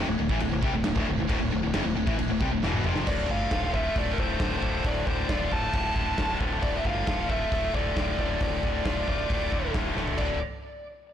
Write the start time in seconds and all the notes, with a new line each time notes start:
0.08 D1 D2 A2
0.19 D1 D2 A2
0.29 A1 A2 E3, kick
0.40 D1 D2 A2, crash
0.52 D1 D2 A2
0.63 C2 C3 G3, kick
0.75 D1 D2 A2
0.84 D1 D2 A2, snare, crash
0.96 D1 D2 A2, kick
1.09 D1 D2 A2
1.20 D1 D2 A2
1.29 D1 D2 A2, kick, crash
1.41 D1 D2 A2
1.52 D1 D2 A2
1.63 D1 D2 A2
1.74 F1 F2 C3, snare, crash
1.85 D1 D2 A2
1.95 D1 D2 A2
2.06 A1 A2 E3, kick
2.18 D1 D2 A2, crash
2.29 D1 D2 A2
2.40 C2 C3 G3, kick
2.52 D1 D2 A2
2.63 E1 E2 B2 E3, snare
2.74 mid tom
2.84 F1 F2 C3 F3, mid tom
2.96 snare
3.07 D1 D2 D5, kick, crash
3.29 G1 D3 F5, kick
3.51 D1 A3 F4, kick, snare, open hi-hat
3.74 A3 F4 E5, kick
3.96 D1 A2 A3 D5, kick, open hi-hat
4.11 A#4
4.18 D1 D3 C5, kick
4.40 D1 A2 F4, kick, snare, open hi-hat
4.62 D1 D3 A3, kick
4.84 D1 D2 D5, kick, open hi-hat
5.07 D1 D3 C5, kick
5.29 D1 A3 F4 D5, kick, snare, open hi-hat
5.50 D1 A3 F4 A5, kick
5.74 D1 A2 A3, kick, open hi-hat
5.96 D1 D3, kick
6.18 D1 A2 F4, kick, snare, open hi-hat
6.40 D1 D3 A3, kick
6.63 D1 D2 D5, kick, open hi-hat
6.76 E5
6.85 G1 D3 F5, kick
7.07 D1 A3 F4, kick, snare, open hi-hat
7.29 A3 F4 E5, kick
7.51 D1 A2 A3, kick, open hi-hat
7.73 D1 D3 D5, kick
7.96 D1 A2 F4, kick, snare, open hi-hat
8.18 D1 D3 A3 D5, kick
8.40 D1 D2, kick, open hi-hat
8.63 D1 D3, kick
8.85 D1 A3 F4, kick, snare, open hi-hat
9.07 D1 A3 F4, kick
9.29 D1 A2 A3, kick, open hi-hat
9.52 D1 D3, kick
9.74 D1 A2 F4, kick, snare, open hi-hat
9.96 D1 D3 A3, snare
10.08 floor tom
10.18 D1 D2 A2 D3 D5, kick, crash